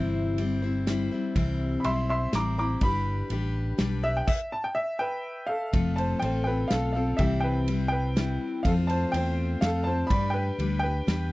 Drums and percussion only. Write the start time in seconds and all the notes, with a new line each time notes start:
0.38 ride
0.87 snare, ride
1.36 kick, ride
1.84 ride
2.33 snare, ride
2.81 kick, ride
3.30 ride
3.79 snare, ride
4.28 kick, crash
5.73 kick, ride
5.98 ride
6.22 ride
6.70 snare, ride
7.18 kick, ride
7.68 ride
8.17 snare, ride
8.65 kick, ride
8.89 ride
9.14 ride
9.62 snare, ride
10.10 kick, ride
10.59 ride
11.08 snare, ride